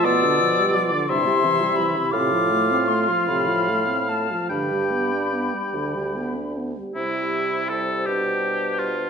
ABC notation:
X:1
M:6/8
L:1/16
Q:3/8=53
K:C
V:1 name="Flute"
e'4 d'2 c'4 b2 | d'4 c'2 b4 a2 | b8- b2 z2 | c12 |]
V:2 name="Oboe"
d6 e6 | f12 | g8- g z3 | E4 A2 G4 F2 |]
V:3 name="Clarinet"
F6 E6 | F8- F2 z2 | G8- G2 z2 | E6 D6 |]
V:4 name="French horn" clef=bass
B,, D, F, G, F, D, G,, C, E, G, E, C, | C, F, A, C A, F, C, F, A, C A, F, | D, G, B, D B, G, D, G, B, D B, G, | G,12 |]
V:5 name="Bassoon" clef=bass
B,,6 C,6 | A,,6 A,,6 | G,,6 D,,6 | C,6 B,,6 |]